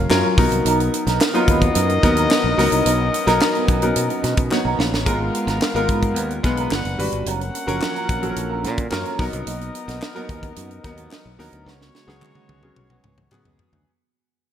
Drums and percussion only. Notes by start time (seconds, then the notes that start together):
0.10 snare, clap
0.38 kick, snare, open hi-hat
0.52 closed hi-hat
0.66 closed hi-hat
0.80 closed hi-hat
0.94 closed hi-hat
1.07 snare, closed hi-hat
1.21 snare, clap
1.35 closed hi-hat
1.48 kick, closed hi-hat
1.61 kick, closed hi-hat
1.75 closed hi-hat
1.89 closed hi-hat
2.03 kick, snare, closed hi-hat
2.17 closed hi-hat
2.31 snare, clap
2.59 snare, open hi-hat
2.72 closed hi-hat
2.86 closed hi-hat
3.14 closed hi-hat
3.27 snare, closed hi-hat
3.41 snare, clap
3.55 closed hi-hat
3.68 kick, closed hi-hat
3.82 closed hi-hat
3.96 closed hi-hat
4.10 closed hi-hat
4.24 snare, closed hi-hat
4.37 kick, closed hi-hat
4.51 snare, clap
4.80 snare
4.94 snare
5.06 kick, closed hi-hat
5.35 closed hi-hat
5.48 snare, closed hi-hat
5.62 snare, clap
5.76 closed hi-hat
5.88 kick, closed hi-hat
6.02 kick, closed hi-hat
6.16 closed hi-hat
6.30 closed hi-hat
6.44 kick, snare, closed hi-hat
6.57 closed hi-hat
6.71 snare, clap
6.85 closed hi-hat
6.99 open hi-hat
7.12 closed hi-hat
7.26 closed hi-hat
7.41 closed hi-hat
7.55 closed hi-hat
7.68 closed hi-hat
7.82 snare, clap
7.96 closed hi-hat
8.09 kick, closed hi-hat
8.23 closed hi-hat
8.36 closed hi-hat
8.64 snare, closed hi-hat
8.78 kick, closed hi-hat
8.91 snare, clap
9.05 closed hi-hat
9.19 kick, snare, open hi-hat
9.33 closed hi-hat
9.47 closed hi-hat
9.61 closed hi-hat
9.75 closed hi-hat
9.88 snare, closed hi-hat
10.02 snare, clap
10.16 closed hi-hat
10.29 kick, closed hi-hat
10.43 kick, closed hi-hat
10.56 closed hi-hat
10.71 closed hi-hat
10.84 kick, snare, closed hi-hat
10.97 closed hi-hat
11.11 snare, clap
11.40 snare, open hi-hat
11.53 closed hi-hat
11.68 snare
11.81 snare
11.95 snare
12.09 snare
12.21 clap, high tom
12.35 high tom
12.49 high tom
12.63 mid tom
12.76 mid tom
12.90 mid tom
13.04 mid tom
13.18 mid tom
13.32 clap, mid tom
13.45 floor tom
13.59 floor tom
13.73 floor tom